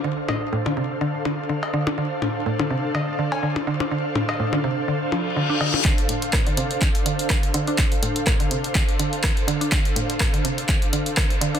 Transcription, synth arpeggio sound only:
X:1
M:4/4
L:1/16
Q:"Swing 16ths" 1/4=124
K:Dm
V:1 name="Synth arpeggio sound" clef=bass
D, z A,, z A,, D, C, z D, z D, z D, z D, D | D, z A,, z A,, D, C, z D, z D, z D, z D, D | D, z A,, z A,, D, C, z D, z F, z D, D D, z | D, z A,, z A,, D, C, z D, z D, z D, z D, D |
D, z A,, z A,, D, C, z D, z D, z D, z D, D | D, z A,, z A,, D, C, z D, z D, z D, z D, D |]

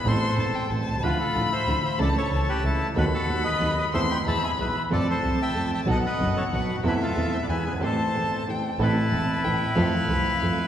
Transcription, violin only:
X:1
M:3/4
L:1/8
Q:1/4=186
K:Am
V:1 name="Violin"
c'2 a g a2 | b6 | a2 a4 | b6 |
c'2 b3 z | a6 | ^f6 | e4 ^g2 |
a4 g2 | a4 g2 | f6 |]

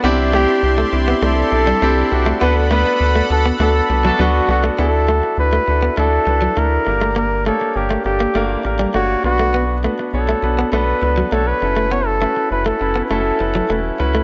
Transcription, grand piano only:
X:1
M:4/4
L:1/8
Q:1/4=101
K:Clyd
V:1 name="Grand piano"
[CDEG] [CDEG] [CDEG] [CDEG] [CDEG] [CDEA] [CDEG] [CDEF] | [B,DFA] [B,DFB] [B,DFA] [B,DFA] [B,DFA] [B,DFB] [B,DFA] [B,DFA] | [K:D] [DEFA] [DEFA] [DEFA] [DEFA] [DEFA] [DEFB] [DEFA] [_B,DG_B]- | [_B,DG_B] [B,DGc] [B,DGB] [B,DGA] [B,DGB] [B,DGB] [B,DGc] [=B,DF=B]- |
[B,DFB] [B,DFB] [B,DFc] [B,DFB] [B,DFA] [B,DFB] [B,DFc] [CEFA]- | [CEFA] [CEFB] [CEFB] [CEFB] [CEFA] [CEFB] [CEFB] [CEFB] |]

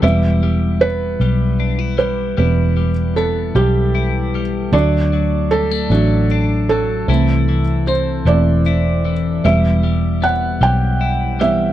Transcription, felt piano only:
X:1
M:6/8
L:1/8
Q:3/8=51
K:Em
V:1 name="Felt piano"
e2 B3 B- | B2 A G2 z | d2 A3 A- | A2 c d2 z |
e2 f g2 e |]
V:2 name="Felt piano" clef=bass
[E,G,B,]3 z3 | [E,G,B,] z4 z | [F,A,D]3 [F,A,D] z2 | [E,A,C] z2 [E,A,C] z2 |
[E,G,B,]4- [E,G,B,] [E,G,B,] |]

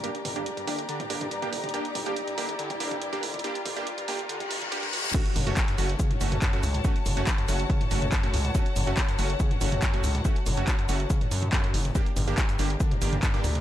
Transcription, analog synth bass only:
X:1
M:4/4
L:1/8
Q:1/4=141
K:F#phr
V:1 name="Analog synth bass" clef=bass
z G,,, z G,,, z G,,, z G,,, | z G,,, z G,,, z G,,, z G,,, | z G,,, z G,,, z G,,, z G,,, | z F,,, z F,,, z F,,, z C,, |
z F,,, z F,,, z F,,, z C,, | z F,,, z F,,, z F,,, z C,, | z F,,, z F,,, z F,, z F,,, | z G,,, z G,,, z G,,, z D,, |]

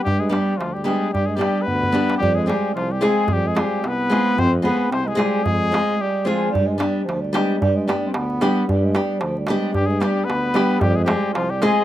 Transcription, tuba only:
X:1
M:2/4
L:1/8
Q:"Swing 16ths" 1/4=112
K:none
V:1 name="Tuba" clef=bass
G,,2 D,,2 | G,,2 D,,2 | F,,2 C,,2 | F,,2 C,,2 |
F,,2 C,,2 | F,,2 z2 | G,,2 D,,2 | G,,2 D,,2 |
G,,2 D,,2 | G,,2 D,,2 | F,,2 C,,2 |]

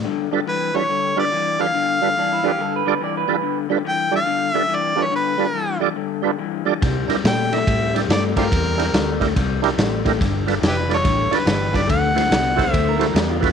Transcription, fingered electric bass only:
X:1
M:4/4
L:1/8
Q:"Swing" 1/4=142
K:Gmix
V:1 name="Fingered electric bass" clef=bass
z8 | z8 | z8 | z8 |
C, z _B,,2 A,,2 G,,2 | E,,2 D,,2 C,,2 A,,,2 | G,,,2 F,,,2 A,,, z G,,,2 | D,,2 C,,2 D,,2 E,,2 |]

